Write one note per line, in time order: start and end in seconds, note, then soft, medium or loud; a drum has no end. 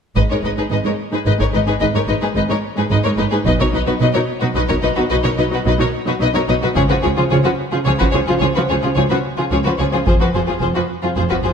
0.16 0.22 G#1 soft
0.16 0.22 G#2 soft
0.16 0.22 G#3 soft
0.16 0.22 D#4 soft
0.16 0.22 B4 soft
0.16 0.22 D#5 soft
0.16 taiko soft
0.30 0.36 G#2 soft
0.30 0.36 G#3 soft
0.30 0.36 D#4 soft
0.30 0.36 A#4 soft
0.30 0.36 C#5 soft
0.43 0.49 G#1 soft
0.43 0.49 G#2 soft
0.43 0.49 G#3 soft
0.43 0.49 D#4 soft
0.43 0.50 B4 soft
0.43 0.50 D#5 soft
0.57 0.62 G#2 soft
0.57 0.63 G#3 soft
0.57 0.63 D#4 soft
0.57 0.63 G#4 soft
0.57 0.63 B4 soft
0.71 0.76 G#1 soft
0.71 0.77 G#2 soft
0.71 0.77 G#3 soft
0.71 0.77 D#4 soft
0.71 0.77 B4 soft
0.71 0.77 D#5 soft
0.84 0.90 G#2 soft
0.84 0.91 G#3 soft
0.84 0.91 D#4 soft
0.84 0.91 A#4 soft
0.84 0.91 C#5 soft
1.12 1.18 G#2 soft
1.12 1.18 G#3 soft
1.12 1.18 D#4 soft
1.12 1.19 G#4 soft
1.12 1.19 B4 soft
1.25 1.32 G#1 soft
1.25 1.31 G#2 soft
1.25 1.31 G#3 soft
1.25 1.31 D#4 soft
1.25 1.32 B4 soft
1.25 1.32 D#5 soft
1.39 1.46 G#2 soft
1.39 1.45 G#3 soft
1.39 1.45 D#4 soft
1.39 1.46 A#4 soft
1.39 1.46 C#5 soft
1.39 taiko soft
1.53 1.59 G#1 soft
1.53 1.59 G#2 soft
1.53 1.59 G#3 soft
1.53 1.59 D#4 soft
1.53 1.59 B4 soft
1.53 1.60 D#5 soft
1.67 1.72 G#2 soft
1.67 1.73 G#3 soft
1.67 1.73 D#4 soft
1.67 1.73 G#4 soft
1.67 1.73 B4 soft
1.80 1.87 G#1 soft
1.80 1.86 G#2 soft
1.80 1.87 G#3 soft
1.80 1.87 D#4 soft
1.80 1.86 B4 soft
1.80 1.86 D#5 soft
1.95 2.00 G#2 soft
1.95 2.01 G#3 soft
1.95 2.01 D#4 soft
1.95 2.01 A#4 soft
1.95 2.01 C#5 soft
2.08 2.14 G#1 soft
2.08 2.15 G#2 soft
2.08 2.14 G#3 soft
2.08 2.14 D#4 soft
2.08 2.14 B4 soft
2.08 2.13 D#5 soft
2.22 2.28 G#2 soft
2.22 2.28 G#3 soft
2.22 2.27 D#4 soft
2.22 2.28 G#4 soft
2.22 2.28 B4 soft
2.36 2.42 G#1 soft
2.36 2.42 G#2 soft
2.36 2.41 G#3 soft
2.36 2.41 D#4 soft
2.36 2.42 B4 soft
2.36 2.42 D#5 soft
2.49 2.56 G#2 soft
2.49 2.55 G#3 soft
2.49 2.55 D#4 soft
2.49 2.56 A#4 soft
2.49 2.56 C#5 soft
2.77 2.83 G#2 soft
2.77 2.83 G#3 soft
2.77 2.83 D#4 soft
2.77 2.83 G#4 soft
2.77 2.83 B4 soft
2.91 2.96 G#1 soft
2.91 2.97 G#2 soft
2.91 2.97 G#3 soft
2.91 2.97 D#4 soft
2.91 2.97 B4 soft
2.91 2.97 D#5 soft
3.04 3.11 G#2 soft
3.04 3.10 G#3 soft
3.04 3.10 D#4 soft
3.04 3.10 A#4 soft
3.04 3.10 C#5 soft
3.18 3.24 G#1 soft
3.18 3.25 G#2 soft
3.18 3.24 G#3 soft
3.18 3.24 D#4 soft
3.18 3.24 B4 soft
3.18 3.24 D#5 soft
3.31 3.38 G#2 soft
3.31 3.37 G#3 soft
3.31 3.37 D#4 soft
3.31 3.37 G#4 soft
3.31 3.37 B4 soft
3.45 3.51 B1 soft
3.45 3.52 B2 medium
3.45 3.51 F#3 soft
3.45 3.51 D#4 soft
3.45 3.52 B4 medium
3.45 3.52 D#5 medium
3.45 taiko soft
3.60 3.65 B2 soft
3.60 3.65 F#3 soft
3.60 3.65 D#4 soft
3.60 3.66 A#4 soft
3.60 3.66 C#5 soft
3.73 3.79 B1 soft
3.73 3.79 B2 soft
3.73 3.78 F#3 soft
3.73 3.79 D#4 soft
3.73 3.80 B4 soft
3.73 3.80 D#5 soft
3.87 3.93 B2 soft
3.87 3.92 F#3 soft
3.87 3.93 D#4 soft
3.87 3.93 F#4 soft
3.87 3.92 B4 soft
4.00 4.06 B1 soft
4.00 4.06 B2 soft
4.00 4.07 F#3 medium
4.00 4.07 D#4 medium
4.00 4.06 B4 soft
4.00 4.07 D#5 soft
4.13 4.20 B2 soft
4.13 4.20 F#3 soft
4.13 4.21 D#4 soft
4.13 4.19 A#4 soft
4.13 4.19 C#5 soft
4.40 4.48 B2 soft
4.40 4.48 F#3 soft
4.40 4.48 D#4 soft
4.40 4.47 F#4 soft
4.40 4.46 B4 soft
4.55 4.62 B1 medium
4.55 4.62 B2 medium
4.55 4.61 F#3 soft
4.55 4.61 D#4 soft
4.55 4.60 B4 medium
4.55 4.61 D#5 soft
4.68 4.76 B2 soft
4.68 4.75 F#3 soft
4.68 4.75 D#4 soft
4.68 4.74 A#4 soft
4.68 4.74 C#5 soft
4.68 taiko soft
4.82 4.90 B1 soft
4.82 4.90 B2 soft
4.82 4.89 F#3 soft
4.82 4.89 D#4 soft
4.82 4.88 B4 soft
4.82 4.88 D#5 soft
4.96 5.03 B2 soft
4.96 5.03 F#3 soft
4.96 5.03 D#4 soft
4.96 5.01 F#4 soft
4.96 5.02 B4 soft
5.09 5.17 B1 soft
5.09 5.17 B2 medium
5.09 5.16 F#3 soft
5.09 5.17 D#4 medium
5.09 5.15 B4 soft
5.09 5.16 D#5 medium
5.24 5.31 B2 soft
5.24 5.30 F#3 soft
5.24 5.30 D#4 soft
5.24 5.30 A#4 soft
5.24 5.30 C#5 soft
5.38 5.44 B1 soft
5.38 5.45 B2 soft
5.38 5.44 F#3 soft
5.38 5.44 D#4 soft
5.38 5.44 B4 soft
5.38 5.44 D#5 soft
5.51 5.58 B2 soft
5.51 5.57 F#3 soft
5.51 5.57 D#4 soft
5.51 5.58 F#4 soft
5.51 5.58 B4 soft
5.65 5.72 B1 medium
5.65 5.72 B2 medium
5.65 5.71 F#3 soft
5.65 5.71 D#4 medium
5.65 5.72 B4 soft
5.65 5.73 D#5 soft
5.79 5.86 B2 soft
5.79 5.85 F#3 soft
5.79 5.84 D#4 soft
5.79 5.86 A#4 soft
5.79 5.86 C#5 soft
6.06 6.13 B2 soft
6.06 6.12 F#3 soft
6.06 6.12 D#4 soft
6.06 6.13 F#4 soft
6.06 6.13 B4 soft
6.20 6.27 B1 medium
6.20 6.27 B2 medium
6.20 6.26 F#3 soft
6.20 6.26 D#4 medium
6.20 6.27 B4 soft
6.20 6.27 D#5 medium
6.34 6.41 B2 soft
6.34 6.40 F#3 soft
6.34 6.40 D#4 soft
6.34 6.40 A#4 soft
6.34 6.41 C#5 soft
6.48 6.54 B1 soft
6.48 6.55 B2 soft
6.48 6.54 F#3 soft
6.48 6.54 D#4 soft
6.48 6.54 B4 soft
6.48 6.54 D#5 soft
6.62 6.69 B2 soft
6.62 6.68 F#3 soft
6.62 6.68 D#4 soft
6.62 6.68 F#4 soft
6.62 6.68 B4 soft
6.75 6.82 C#2 soft
6.75 6.82 C#3 medium
6.75 6.81 F3 soft
6.75 6.81 F4 soft
6.75 6.82 G#4 medium
6.75 6.82 C#5 medium
6.75 taiko soft
6.89 6.95 C#3 soft
6.89 6.96 F3 soft
6.89 6.95 F4 soft
6.89 6.95 F#4 soft
6.89 6.95 B4 soft
7.03 7.10 C#2 soft
7.03 7.10 C#3 soft
7.03 7.09 F3 soft
7.03 7.09 F4 soft
7.03 7.08 G#4 soft
7.03 7.09 C#5 soft
7.17 7.23 C#3 soft
7.17 7.23 F3 soft
7.17 7.22 F4 soft
7.17 7.23 F4 soft
7.17 7.23 G#4 soft
7.30 7.37 C#2 soft
7.30 7.37 C#3 medium
7.30 7.37 F3 soft
7.30 7.37 F4 medium
7.30 7.36 G#4 soft
7.30 7.36 C#5 soft
7.44 7.51 C#3 soft
7.44 7.50 F3 soft
7.44 7.50 F4 soft
7.44 7.50 F#4 soft
7.44 7.50 B4 soft
7.72 7.79 C#3 soft
7.72 7.78 F3 soft
7.72 7.78 F4 soft
7.72 7.78 G#4 soft
7.85 7.92 C#2 medium
7.85 7.92 C#3 medium
7.85 7.92 F3 soft
7.85 7.92 F4 soft
7.85 7.91 G#4 medium
7.85 7.91 C#5 medium
8.00 8.06 C#3 soft
8.00 8.06 F3 soft
8.00 8.06 F4 soft
8.00 8.06 F#4 soft
8.00 8.06 B4 soft
8.00 taiko soft
8.12 8.19 C#2 soft
8.12 8.20 C#3 soft
8.12 8.19 F3 soft
8.12 8.20 F4 soft
8.12 8.19 G#4 soft
8.12 8.18 C#5 soft
8.28 8.34 C#3 soft
8.28 8.34 F3 soft
8.28 8.33 F4 soft
8.28 8.34 F4 soft
8.28 8.33 G#4 soft
8.41 8.47 C#2 medium
8.41 8.48 C#3 medium
8.41 8.48 F3 soft
8.41 8.48 F4 soft
8.41 8.47 G#4 soft
8.41 8.47 C#5 soft
8.55 8.62 C#3 soft
8.55 8.63 F3 soft
8.55 8.62 F4 soft
8.55 8.61 F#4 soft
8.55 8.61 B4 soft
8.69 8.75 C#2 soft
8.69 8.75 C#3 soft
8.69 8.76 F3 soft
8.69 8.76 F4 soft
8.69 8.75 G#4 soft
8.69 8.75 C#5 soft
8.82 8.89 C#3 soft
8.82 8.90 F3 soft
8.82 8.88 F4 soft
8.82 8.90 F4 soft
8.82 8.88 G#4 soft
8.96 9.02 C#2 soft
8.96 9.02 C#3 medium
8.96 9.02 F3 soft
8.96 9.03 F4 soft
8.96 9.01 G#4 soft
8.96 9.02 C#5 soft
9.10 9.16 C#3 soft
9.10 9.17 F3 soft
9.10 9.17 F4 soft
9.10 9.16 F#4 soft
9.10 9.16 B4 soft
9.37 9.44 C#3 soft
9.37 9.44 F3 soft
9.37 9.43 F4 soft
9.37 9.44 F4 soft
9.37 9.43 G#4 soft
9.52 9.57 C#2 soft
9.52 9.57 C#3 soft
9.52 9.57 F3 soft
9.52 9.58 F4 soft
9.52 9.57 G#4 soft
9.52 9.57 C#5 soft
9.64 9.71 C#3 soft
9.64 9.72 F3 soft
9.64 9.72 F4 soft
9.64 9.70 F#4 soft
9.64 9.71 B4 soft
9.79 9.85 C#2 soft
9.79 9.86 C#3 soft
9.79 9.85 F3 soft
9.79 9.85 F4 soft
9.79 9.85 G#4 soft
9.79 9.85 C#5 soft
9.93 9.99 C#3 soft
9.93 9.98 F3 soft
9.93 9.98 F4 soft
9.93 9.99 F4 soft
9.93 9.98 G#4 soft
10.07 10.13 F1 soft
10.07 10.13 F2 soft
10.07 10.12 F3 soft
10.07 10.12 F4 soft
10.07 10.13 G#4 soft
10.07 10.13 C5 soft
10.07 taiko soft
10.20 10.27 F2 soft
10.20 10.26 F3 soft
10.20 10.26 F4 soft
10.20 10.26 F#4 soft
10.20 10.26 B4 soft
10.34 10.40 F1 soft
10.34 10.40 F2 soft
10.34 10.40 F3 soft
10.34 10.40 F4 soft
10.34 10.40 G#4 soft
10.34 10.40 C5 soft
10.47 10.54 F2 soft
10.47 10.54 F3 soft
10.47 10.53 F4 soft
10.47 10.53 G#4 soft
10.61 10.67 F1 soft
10.61 10.68 F2 soft
10.61 10.67 F3 soft
10.61 10.67 F4 soft
10.61 10.67 G#4 soft
10.61 10.67 C5 soft
10.75 10.82 F2 soft
10.75 10.81 F3 soft
10.75 10.81 F4 soft
10.75 10.80 F#4 soft
10.75 10.81 B4 soft
11.03 11.09 F2 soft
11.03 11.09 F3 soft
11.03 11.08 F4 soft
11.03 11.09 F4 soft
11.03 11.09 G#4 soft
11.16 11.23 F1 soft
11.16 11.22 F2 soft
11.16 11.22 F3 soft
11.16 11.22 F4 soft
11.16 11.22 G#4 soft
11.16 11.22 C5 soft
11.29 11.36 F2 soft
11.29 11.36 F3 soft
11.29 11.36 F4 soft
11.29 11.35 F#4 soft
11.29 11.35 B4 soft
11.29 taiko soft
11.44 11.50 F1 soft
11.44 11.50 F2 soft
11.44 11.50 F3 soft
11.44 11.50 F4 soft
11.44 11.49 G#4 soft
11.44 11.50 C5 soft